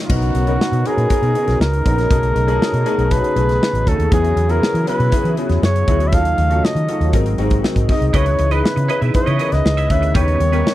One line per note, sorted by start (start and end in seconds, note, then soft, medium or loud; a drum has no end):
0.00 0.11 A#3 loud
0.00 0.09 D#4 loud
0.00 0.11 E4 medium
0.00 0.13 F4 medium
0.00 0.11 G4 medium
0.00 0.12 C#5 loud
0.08 0.31 B1 loud
0.08 6.09 C#3 medium
0.08 0.36 B3 medium
0.08 2.09 B3 medium
0.08 0.36 C#4 medium
0.08 0.36 D#4 medium
0.08 4.08 D#4 medium
0.08 0.36 F#4 medium
0.08 0.88 F#4 medium
0.08 0.36 A#4 medium
0.08 2.09 A#4 medium
0.08 kick loud
0.08 crash medium
0.22 closed hi-hat soft
0.35 0.56 B1 medium
0.35 closed hi-hat medium
0.47 0.74 B3 medium
0.47 0.74 C#4 medium
0.47 0.74 D#4 medium
0.47 0.74 F#4 medium
0.47 0.74 A#4 medium
0.47 closed hi-hat medium
0.60 muted fingered electric bass stroke soft
0.60 snare loud
0.72 0.83 B2 loud
0.72 closed hi-hat medium
0.84 1.02 B3 medium
0.84 1.03 C#4 medium
0.84 1.03 D#4 medium
0.84 1.03 F#4 medium
0.84 1.61 G#4 loud
0.84 1.03 A#4 medium
0.84 closed hi-hat medium
0.97 1.08 A#2 medium
0.97 closed hi-hat soft
1.09 1.27 B3 medium
1.09 1.28 C#4 medium
1.09 1.28 D#4 medium
1.09 1.28 F#4 medium
1.09 1.28 A#4 medium
1.09 muted fingered electric bass stroke soft
1.09 kick medium
1.09 closed hi-hat medium
1.22 1.33 B2 loud
1.22 closed hi-hat soft
1.35 1.71 B3 medium
1.35 1.71 C#4 medium
1.35 1.71 D#4 medium
1.35 1.71 F#4 medium
1.35 1.42 G#4 medium
1.35 closed hi-hat medium
1.42 1.74 A#4 medium
1.48 1.58 B1 medium
1.48 snare soft
1.48 closed hi-hat medium
1.60 1.81 C#2 medium
1.60 3.13 A#4 loud
1.60 snare loud
1.73 closed hi-hat medium
1.85 2.07 A#1 loud
1.85 2.03 B3 medium
1.85 2.03 C#4 medium
1.85 2.03 D#4 medium
1.85 2.04 F#4 medium
1.85 2.04 A#4 medium
1.85 kick medium
1.85 closed hi-hat medium
1.98 snare soft
1.98 closed hi-hat medium
2.10 2.32 B1 loud
2.10 2.37 A3 medium
2.10 4.10 B3 medium
2.10 2.37 C#4 medium
2.10 2.37 D#4 medium
2.10 2.37 F#4 medium
2.10 2.38 G#4 medium
2.10 6.09 G#4 medium
2.10 kick loud
2.10 closed hi-hat medium
2.23 closed hi-hat medium
2.36 2.57 B1 loud
2.36 closed hi-hat medium
2.47 2.74 A3 medium
2.47 2.74 C#4 medium
2.47 2.75 D#4 medium
2.47 2.75 F#4 medium
2.47 2.75 G#4 loud
2.47 closed hi-hat medium
2.61 muted fingered electric bass stroke soft
2.61 snare loud
2.73 2.84 B2 medium
2.73 closed hi-hat medium
2.85 3.03 A3 medium
2.85 3.03 C#4 medium
2.85 3.03 D#4 medium
2.85 3.04 F#4 medium
2.85 3.04 G#4 loud
2.85 closed hi-hat medium
2.98 3.20 B1 medium
2.98 closed hi-hat medium
3.10 3.28 A3 medium
3.10 3.28 C#4 medium
3.10 3.29 D#4 medium
3.10 3.29 F#4 medium
3.10 3.29 G#4 medium
3.10 3.90 B4 loud
3.10 kick medium
3.10 closed hi-hat medium
3.24 closed hi-hat soft
3.35 3.57 B1 medium
3.35 3.71 A3 medium
3.35 3.72 C#4 medium
3.35 3.72 D#4 medium
3.35 3.72 F#4 medium
3.35 3.72 G#4 medium
3.35 closed hi-hat medium
3.49 snare soft
3.49 closed hi-hat medium
3.63 snare loud
3.73 3.84 A1 medium
3.73 closed hi-hat medium
3.87 3.97 D2 medium
3.87 4.04 A3 medium
3.87 4.05 C#4 medium
3.87 4.05 D#4 medium
3.87 4.05 F#4 medium
3.87 4.05 G#4 medium
3.87 4.12 A4 loud
3.87 kick medium
3.87 closed hi-hat medium
3.98 4.09 D#2 medium
3.98 closed hi-hat medium
4.10 4.33 E2 loud
4.10 8.09 F#3 medium
4.10 4.38 B3 medium
4.10 4.38 C#4 medium
4.10 6.10 E4 medium
4.10 4.38 E4 medium
4.10 4.39 F#4 medium
4.10 4.39 G#4 medium
4.10 4.52 G#4 loud
4.10 kick loud
4.10 closed hi-hat medium
4.24 closed hi-hat medium
4.36 4.58 E2 loud
4.36 closed hi-hat medium
4.48 4.76 B3 medium
4.48 4.76 C#4 medium
4.48 4.76 E4 medium
4.48 4.76 F#4 medium
4.48 4.76 G#4 medium
4.48 4.88 A#4 loud
4.48 closed hi-hat medium
4.62 muted fingered electric bass stroke soft
4.62 snare loud
4.74 4.85 E3 loud
4.74 closed hi-hat medium
4.86 5.05 B3 medium
4.86 5.05 C#4 medium
4.86 5.05 E4 medium
4.86 5.05 F#4 medium
4.86 5.05 B4 medium
4.86 5.33 B4 loud
4.86 closed hi-hat medium
4.99 5.10 B2 loud
4.99 closed hi-hat soft
5.12 5.30 B3 medium
5.12 5.30 C#4 medium
5.12 5.30 E4 medium
5.12 5.30 F#4 medium
5.12 5.30 G#4 medium
5.12 muted fingered electric bass stroke soft
5.12 kick medium
5.12 closed hi-hat medium
5.24 5.35 E3 medium
5.24 closed hi-hat soft
5.37 5.73 B3 medium
5.37 5.73 C#4 medium
5.37 5.73 E4 medium
5.37 5.73 F#4 medium
5.37 5.73 G#4 medium
5.37 closed hi-hat medium
5.49 5.60 E2 loud
5.49 snare soft
5.49 closed hi-hat medium
5.62 5.83 F#2 medium
5.62 6.09 C#5 medium
5.62 snare loud
5.76 closed hi-hat medium
5.88 6.12 D2 loud
5.88 6.05 B3 medium
5.88 6.05 C#4 medium
5.88 6.06 E4 medium
5.88 6.06 F#4 medium
5.88 6.06 G#4 medium
5.88 kick loud
5.88 closed hi-hat medium
6.00 closed hi-hat medium
6.08 6.16 E5 medium
6.12 6.34 D#2 loud
6.12 7.12 C#3 medium
6.12 7.12 A3 medium
6.12 6.39 C#4 medium
6.12 6.39 D#4 medium
6.12 6.39 F4 medium
6.12 6.39 F#4 medium
6.12 6.40 A4 medium
6.12 10.74 D#5 medium
6.12 6.66 F5 loud
6.12 kick loud
6.12 closed hi-hat medium
6.25 closed hi-hat medium
6.38 6.59 D#2 loud
6.38 closed hi-hat medium
6.49 6.77 C#4 medium
6.49 6.77 D#4 medium
6.49 6.77 F4 medium
6.49 6.77 F#4 medium
6.49 6.77 A4 medium
6.49 closed hi-hat medium
6.63 7.14 D#5 medium
6.63 muted fingered electric bass stroke soft
6.63 snare loud
6.75 6.86 D#3 loud
6.75 closed hi-hat medium
6.88 7.06 C#4 medium
6.88 7.06 D#4 medium
6.88 7.06 F4 medium
6.88 7.06 F#4 medium
6.88 7.07 A4 medium
6.88 closed hi-hat medium
7.00 7.11 D#2 medium
7.00 closed hi-hat soft
7.13 7.35 G#1 loud
7.13 8.12 C3 medium
7.13 8.12 G#3 medium
7.13 7.31 C4 medium
7.13 7.31 D#4 medium
7.13 7.31 F#4 medium
7.13 7.31 G#4 medium
7.13 7.31 A#4 medium
7.13 kick medium
7.13 closed hi-hat medium
7.26 closed hi-hat soft
7.38 7.60 G#1 medium
7.38 7.74 C4 medium
7.38 7.74 D#4 medium
7.38 7.74 F#4 medium
7.38 7.74 G#4 medium
7.38 7.74 A#4 medium
7.38 closed hi-hat medium
7.50 kick medium
7.50 closed hi-hat medium
7.64 snare loud
7.76 7.87 G#2 medium
7.76 kick medium
7.76 closed hi-hat medium
7.88 8.06 C4 medium
7.88 8.06 D#4 medium
7.88 8.07 F#4 medium
7.88 8.07 G#4 medium
7.88 8.07 A#4 medium
7.88 8.08 D#5 medium
7.88 kick loud
7.88 open hi-hat medium
8.01 8.12 C2 medium
8.01 closed hi-hat medium
8.08 8.17 D#5 medium
8.13 8.35 C#2 loud
8.13 10.74 C#3 medium
8.13 10.13 E3 medium
8.13 10.74 B3 medium
8.13 8.40 C#4 medium
8.13 8.41 D#4 medium
8.13 8.34 E4 medium
8.13 8.41 E4 medium
8.13 8.41 G#4 medium
8.13 8.26 B4 medium
8.13 8.41 B4 medium
8.13 8.54 C#5 medium
8.13 8.25 D#5 loud
8.13 kick loud
8.13 closed hi-hat medium
8.26 muted clean electric guitar stroke soft
8.26 closed hi-hat medium
8.38 8.60 C#2 medium
8.38 muted clean electric guitar stroke soft
8.38 closed hi-hat medium
8.51 8.78 C#4 medium
8.51 8.78 D#4 medium
8.51 8.78 E4 medium
8.51 8.62 E4 medium
8.51 8.79 G#4 medium
8.51 8.63 B4 medium
8.51 8.79 B4 medium
8.51 8.89 B4 medium
8.51 8.63 D#5 medium
8.51 closed hi-hat medium
8.64 muted clean electric guitar stroke soft
8.64 snare loud
8.76 8.87 C#3 loud
8.76 muted clean electric guitar stroke soft
8.76 closed hi-hat medium
8.88 9.06 C#4 medium
8.88 9.07 D#4 medium
8.88 9.01 E4 medium
8.88 9.07 E4 medium
8.88 9.07 G#4 medium
8.88 9.01 B4 medium
8.88 9.07 B4 medium
8.88 9.01 B4 medium
8.88 9.01 D#5 medium
8.88 closed hi-hat medium
9.01 9.12 B2 medium
9.01 9.13 E4 medium
9.01 9.13 B4 medium
9.01 9.14 E5 medium
9.01 closed hi-hat soft
9.14 9.32 C#4 medium
9.14 9.32 D#4 medium
9.14 9.32 E4 medium
9.14 9.32 G#4 medium
9.14 9.32 B4 medium
9.14 9.54 C#5 medium
9.14 muted clean electric guitar stroke soft
9.14 kick medium
9.14 closed hi-hat medium
9.26 9.38 C#3 medium
9.26 9.38 E4 medium
9.26 9.39 B4 medium
9.26 9.39 D#5 medium
9.26 closed hi-hat soft
9.38 9.74 C#4 medium
9.38 9.75 D#4 medium
9.38 9.59 E4 medium
9.38 9.75 E4 medium
9.38 9.75 G#4 medium
9.38 9.46 A#4 medium
9.38 9.51 B4 medium
9.38 9.51 D#5 loud
9.38 closed hi-hat medium
9.46 9.78 B4 medium
9.52 9.63 C#2 medium
9.52 9.92 D#5 loud
9.52 muted clean electric guitar stroke soft
9.52 snare soft
9.52 closed hi-hat medium
9.65 9.86 C#2 medium
9.65 muted clean electric guitar stroke soft
9.65 snare loud
9.77 9.88 E4 medium
9.77 9.89 B4 medium
9.77 9.90 E5 medium
9.77 closed hi-hat medium
9.89 10.11 D2 medium
9.89 10.07 C#4 medium
9.89 10.08 D#4 medium
9.89 10.08 E4 medium
9.89 10.08 G#4 medium
9.89 10.08 B4 medium
9.89 10.15 E5 loud
9.89 muted clean electric guitar stroke soft
9.89 kick medium
9.89 closed hi-hat medium
10.02 muted clean electric guitar stroke medium
10.02 closed hi-hat medium
10.14 10.36 D#2 loud
10.14 10.74 G3 medium
10.14 10.41 B3 medium
10.14 10.41 C#4 medium
10.14 10.38 C#4 loud
10.14 10.42 D#4 medium
10.14 10.42 G4 medium
10.14 10.38 G4 medium
10.14 10.42 A#4 medium
10.14 10.38 B4 loud
10.14 10.74 C#5 loud
10.14 kick loud
10.14 closed hi-hat medium
10.28 closed hi-hat soft
10.40 10.61 D#2 loud
10.40 muted clean electric guitar stroke soft
10.40 closed hi-hat medium
10.52 10.74 B3 medium
10.52 10.74 C#4 medium
10.52 10.69 C#4 medium
10.52 10.74 D#4 medium
10.52 10.74 G4 medium
10.52 10.69 G4 medium
10.52 10.74 A#4 medium
10.52 10.69 B4 medium
10.52 closed hi-hat medium
10.65 muted fingered electric bass stroke soft
10.65 snare loud